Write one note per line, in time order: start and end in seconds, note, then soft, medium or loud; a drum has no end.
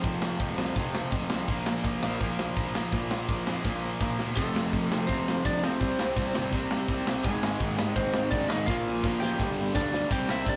0.03 0.28 F1 medium
0.03 0.38 F2 medium
0.03 0.39 C3 loud
0.03 0.40 F3 loud
0.03 kick loud
0.03 open hi-hat medium
0.22 snare loud
0.39 0.52 F1 loud
0.39 0.57 F2 medium
0.39 0.57 C3 medium
0.39 0.58 F3 medium
0.39 kick loud
0.39 open hi-hat medium
0.58 0.70 C2 medium
0.58 0.76 F2 medium
0.58 0.76 C3 medium
0.58 0.77 F3 medium
0.58 snare loud
0.76 1.00 F1 medium
0.76 1.11 F2 medium
0.76 1.12 C3 medium
0.76 1.13 F3 loud
0.76 kick loud
0.76 open hi-hat medium
0.95 snare loud
1.12 1.24 F1 medium
1.12 1.30 F2 medium
1.12 1.30 C3 medium
1.12 1.31 F3 medium
1.12 kick loud
1.12 open hi-hat medium
1.30 1.43 C2 medium
1.30 1.48 F2 medium
1.30 1.48 C3 medium
1.30 1.49 F3 medium
1.30 snare loud
1.48 1.72 A#1 medium
1.48 1.85 A#2 medium
1.48 1.85 F3 loud
1.48 1.86 A#3 medium
1.48 kick loud
1.48 open hi-hat medium
1.66 snare loud
1.84 1.96 A#1 medium
1.84 2.03 A#2 medium
1.84 2.04 F3 medium
1.84 2.04 A#3 loud
1.84 kick loud
1.84 open hi-hat medium
2.03 2.15 A#1 medium
2.03 2.21 A#2 medium
2.03 2.22 F3 medium
2.03 2.21 A#3 medium
2.03 snare loud
2.21 2.33 A#1 medium
2.21 2.56 A#2 medium
2.21 2.57 F3 loud
2.21 2.57 A#3 loud
2.21 kick loud
2.21 open hi-hat medium
2.39 2.51 A#1 medium
2.39 snare loud
2.57 2.81 A#1 medium
2.57 2.74 A#2 medium
2.57 2.75 F3 medium
2.57 2.75 A#3 medium
2.57 kick loud
2.57 open hi-hat medium
2.75 2.92 A#2 medium
2.75 2.92 F3 medium
2.75 2.93 A#3 medium
2.75 snare loud
2.92 3.17 A#1 medium
2.92 3.28 A#2 medium
2.92 3.28 F3 medium
2.92 3.29 A#3 medium
2.92 kick loud
2.92 open hi-hat medium
3.11 snare loud
3.29 3.41 A#1 medium
3.29 3.46 A#2 medium
3.29 3.46 F3 medium
3.29 3.47 A#3 medium
3.29 kick loud
3.29 open hi-hat medium
3.47 3.59 F2 medium
3.47 3.64 A#2 medium
3.47 3.64 F3 medium
3.47 3.65 A#3 medium
3.47 snare loud
3.65 3.89 A#1 medium
3.65 4.01 A#2 medium
3.65 4.02 F3 loud
3.65 4.02 A#3 loud
3.65 kick loud
3.65 snare medium
4.01 4.13 A#1 medium
4.01 4.18 A#2 medium
4.01 4.18 F3 medium
4.01 4.19 A#3 medium
4.01 kick loud
4.01 snare medium
4.19 4.31 E1 medium
4.19 4.36 A#2 medium
4.19 4.36 F3 medium
4.19 4.36 A#3 medium
4.19 snare medium
4.36 4.51 F1 medium
4.36 4.71 F2 medium
4.36 4.72 C3 loud
4.36 4.73 F3 medium
4.36 5.06 A3 medium
4.36 5.05 A4 medium
4.36 kick loud
4.36 crash loud
4.55 4.69 F1 medium
4.55 snare loud
4.72 4.87 F1 medium
4.72 4.90 F2 medium
4.72 4.90 C3 medium
4.72 4.91 F3 medium
4.72 kick loud
4.72 ride medium
4.91 5.05 F1 medium
4.91 5.07 F2 medium
4.91 5.08 C3 medium
4.91 5.08 F3 medium
4.91 snare loud
5.07 5.23 F1 loud
5.07 5.43 F2 medium
5.07 5.43 C3 loud
5.07 5.44 F3 loud
5.07 5.42 C4 medium
5.07 5.45 C5 loud
5.07 kick loud
5.07 ride medium
5.27 5.41 F1 medium
5.27 snare loud
5.44 5.59 F1 medium
5.44 5.62 F2 medium
5.44 5.62 C3 medium
5.44 5.63 F3 medium
5.44 5.62 D4 medium
5.44 5.64 D5 loud
5.44 kick loud
5.44 ride medium
5.63 5.78 F1 medium
5.63 5.80 F2 medium
5.63 5.79 C3 medium
5.63 5.80 F3 loud
5.63 6.31 C4 medium
5.63 6.35 C5 medium
5.63 snare loud
5.81 5.95 C2 medium
5.81 6.15 C3 loud
5.81 6.16 G3 loud
5.81 6.17 C4 loud
5.81 kick loud
5.81 ride medium
5.99 6.13 C2 medium
5.99 snare loud
6.16 6.31 C2 medium
6.16 6.33 C3 medium
6.16 6.34 G3 medium
6.16 6.35 C4 medium
6.16 kick loud
6.16 ride medium
6.34 6.49 G1 medium
6.34 6.51 C3 medium
6.34 6.52 G3 medium
6.34 6.52 C4 loud
6.34 snare loud
6.52 6.67 C2 loud
6.52 6.87 C3 loud
6.52 6.87 G3 loud
6.52 6.87 C4 loud
6.52 kick loud
6.52 ride medium
6.70 6.85 C2 medium
6.70 snare loud
6.88 7.26 C2 medium
6.88 7.05 C3 medium
6.88 7.06 G3 medium
6.88 7.06 C4 loud
6.88 kick loud
6.88 ride medium
7.07 7.23 C3 medium
7.07 7.24 G3 medium
7.07 7.24 C4 medium
7.07 snare loud
7.24 7.39 G#1 medium
7.24 7.60 G#2 medium
7.24 7.61 D#3 loud
7.24 7.61 G#3 loud
7.24 7.92 G#3 medium
7.24 7.76 G#4 medium
7.24 kick loud
7.24 ride medium
7.42 7.56 G#1 medium
7.42 snare loud
7.60 7.74 G#1 loud
7.60 7.77 G#2 medium
7.60 7.77 D#3 medium
7.60 7.78 G#3 medium
7.60 kick loud
7.60 ride medium
7.76 7.93 G#1 medium
7.76 7.95 G#2 medium
7.76 7.95 D#3 medium
7.76 7.96 G#3 medium
7.76 7.98 G4 medium
7.76 snare loud
7.96 8.10 G#1 loud
7.96 8.30 G#2 loud
7.96 8.31 D#3 medium
7.96 8.31 G#3 loud
7.96 8.31 C4 medium
7.96 8.29 C5 medium
7.96 kick loud
7.96 ride medium
8.14 8.28 G#1 medium
8.14 snare loud
8.31 8.46 G#1 medium
8.31 8.48 G#2 medium
8.31 8.48 D#3 medium
8.31 8.49 G#3 loud
8.31 8.49 D4 medium
8.31 8.49 D5 loud
8.31 kick loud
8.31 ride medium
8.49 8.64 G#1 medium
8.49 8.66 G#2 medium
8.49 8.66 D#3 medium
8.49 8.67 G#3 loud
8.49 8.67 D#4 medium
8.49 8.68 D#5 loud
8.49 snare loud
8.66 8.82 A#1 medium
8.66 9.03 A#2 loud
8.66 9.03 F3 loud
8.66 9.04 A#3 loud
8.66 9.18 F4 medium
8.66 9.20 F5 loud
8.66 kick loud
8.66 snare medium
8.86 9.00 A#1 medium
9.04 9.18 A#1 medium
9.04 9.21 A#2 medium
9.04 9.21 F3 medium
9.04 9.22 A#3 medium
9.04 kick loud
9.04 snare medium
9.20 9.36 A1 medium
9.20 9.38 A#2 medium
9.20 9.39 F3 medium
9.20 9.39 A#3 medium
9.20 9.71 G4 medium
9.20 9.71 G5 loud
9.20 snare medium
9.39 9.53 G1 loud
9.39 9.74 G2 loud
9.39 9.75 D3 loud
9.39 9.75 G3 loud
9.39 kick loud
9.39 snare medium
9.57 9.71 G1 medium
9.75 10.03 D2 medium
9.75 9.91 G2 medium
9.75 9.92 D3 medium
9.75 9.92 G3 medium
9.75 10.08 D4 medium
9.75 10.12 D5 medium
9.75 kick loud
9.75 snare loud
9.92 10.09 G2 medium
9.92 10.09 D3 medium
9.92 10.09 G3 medium
9.92 snare medium
10.09 10.25 C2 loud
10.09 10.56 C3 medium
10.09 10.56 G3 loud
10.09 10.56 C4 loud
10.09 10.28 G4 medium
10.09 10.28 G5 loud
10.09 kick loud
10.09 crash loud
10.09 crash medium
10.29 10.43 C2 medium
10.29 10.46 E4 medium
10.29 10.48 E5 loud
10.29 snare loud
10.46 10.56 C3 medium
10.46 10.56 D4 medium
10.46 10.56 D5 medium
10.46 kick loud
10.46 crash medium